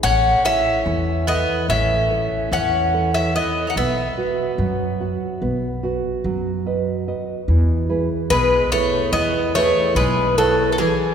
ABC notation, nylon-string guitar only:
X:1
M:9/8
L:1/8
Q:3/8=48
K:E
V:1 name="Nylon-string guitar"
A, [EAc] E, [EAc] A, [EAc] E, [EAc] [EAc] | B, [FBf] F, [FBf] B, [FBf] F, [FBd] [FBd] | E, [EGB] B,, [EGB] E, [EGB] B,, [EB] [EGB] |]